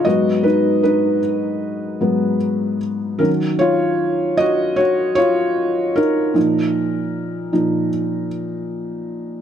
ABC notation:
X:1
M:4/4
L:1/8
Q:1/4=76
K:Ebm
V:1 name="Felt piano"
[Ge] [Ec] [Ec]4- [Ec] z | B [Fd]2 [Ge] [Gd] [Fd]2 [EB]- | [EB]4- [EB] z3 |]
V:2 name="Felt piano" clef=bass
[A,,G,C]3 z2 [A,,G,C] z2 | [E,G,D]8 | [B,,F,E]3 [B,,F,E] z4 |]